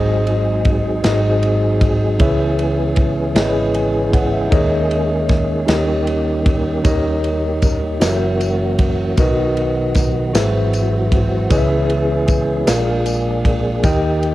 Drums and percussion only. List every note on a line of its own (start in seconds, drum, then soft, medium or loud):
0.27 ride bell soft
0.65 kick loud
0.65 ride bell soft
1.04 snare loud
1.04 ride bell medium
1.43 ride bell soft
1.81 kick loud
1.81 ride bell medium
2.20 kick loud
2.20 ride bell medium
2.59 ride bell soft
2.96 kick medium
2.96 ride bell soft
3.36 snare loud
3.36 ride bell medium
3.74 ride bell soft
4.13 kick loud
4.13 ride bell medium
4.52 kick loud
4.52 ride bell medium
4.91 ride bell soft
5.29 kick loud
5.29 snare soft
5.29 ride bell soft
5.68 snare loud
5.68 ride bell medium
6.07 ride bell soft
6.46 kick loud
6.46 ride bell medium
6.85 kick loud
6.85 ride bell medium
6.85 tambourine soft
7.24 ride bell soft
7.62 kick loud
7.62 ride bell soft
7.62 tambourine medium
8.01 snare loud
8.01 ride bell medium
8.01 tambourine medium
8.41 ride bell soft
8.41 tambourine medium
8.79 kick loud
8.79 ride bell medium
9.17 kick loud
9.17 ride bell medium
9.17 tambourine soft
9.57 ride bell soft
9.95 kick loud
9.95 snare soft
9.95 ride bell soft
9.95 tambourine medium
10.35 snare loud
10.35 ride bell medium
10.35 tambourine medium
10.73 ride bell soft
10.73 tambourine medium
11.12 kick loud
11.12 ride bell medium
11.50 kick loud
11.50 ride bell medium
11.50 tambourine medium
11.90 ride bell soft
12.28 kick loud
12.28 ride bell soft
12.28 tambourine medium
12.67 snare loud
12.67 ride bell medium
12.67 tambourine loud
13.06 ride bell soft
13.06 tambourine medium
13.45 kick loud
13.45 ride bell medium
13.83 kick loud
13.83 ride bell medium
13.83 tambourine soft
14.23 ride bell soft